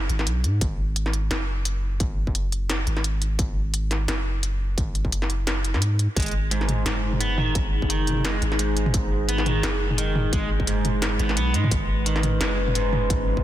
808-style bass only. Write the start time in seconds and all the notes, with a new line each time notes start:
0.09 G#1
0.27 B1
0.44 G#2
0.61 G#1
1.31 F#1
2.00 G#1
2.27 F#1
2.87 G#1
3.39 G#1
4.08 F#1
4.78 G#1
5.05 F#1
5.74 G#2
6.16 G#1
6.86 F#1
7.55 G#1
7.82 F#1
8.42 G#1
8.94 G#1
9.63 F#1
10.33 G#1
10.60 F#1
11.19 G#1
11.37 B1
11.54 G#2
11.71 G#1
12.41 F#1
13.10 G#1
13.37 F#1